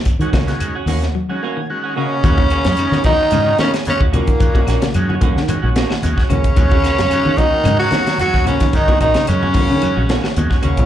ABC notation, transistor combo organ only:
X:1
M:4/4
L:1/16
Q:"Swing 16ths" 1/4=111
K:Ebm
V:1 name="Transistor combo organ"
z [E,A,DG] z [E,A,DG]2 z4 [E,A,DG] a2 [E,A,DGg]2 e2 | [E,A,DG] z3 [E,A,DE] z3 [E,A,DF] z3 [E,A,DG] z3 | [E,A,DG] z3 [E,A,DG] z3 [E,A,DG] z3 [E,A,DG] z3 | [E,A,DG] z3 [E,A,DG] z3 [E,A,DG] z3 [E,A,DG] z3 |
[E,A,DG] z3 [E,A,DG] z3 [E,A,DG] z3 [E,A,DG] z3 |]